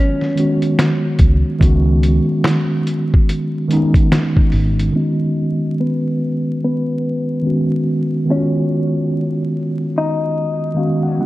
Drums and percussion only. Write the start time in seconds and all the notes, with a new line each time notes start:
0.21 snare
0.37 closed hi-hat
0.62 closed hi-hat
0.79 finger snap, snare, closed hi-hat
1.19 kick, closed hi-hat
1.61 kick, closed hi-hat
2.03 closed hi-hat
2.44 finger snap, snare, closed hi-hat
2.87 closed hi-hat
3.14 kick
3.29 closed hi-hat
3.71 closed hi-hat
3.94 kick, closed hi-hat
4.12 finger snap, snare, closed hi-hat
4.37 kick
4.52 open hi-hat
4.79 closed hi-hat